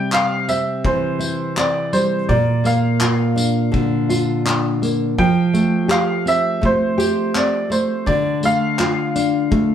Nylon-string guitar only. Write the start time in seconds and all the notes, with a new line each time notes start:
Already playing: C3 G3
0.48 C4
0.85 E3
1.19 E4
1.57 C4
1.93 G3
2.29 A#2
2.64 A#3
3.01 F4
3.36 D4
3.72 D3
4.09 F4
4.45 D4
4.82 A#3
5.18 F3
5.53 A3
5.88 G4
6.26 C4
6.61 A3
6.98 G4
7.35 C4
7.70 A3
8.06 D3
8.43 A3
8.80 F4
9.15 D4
9.51 A3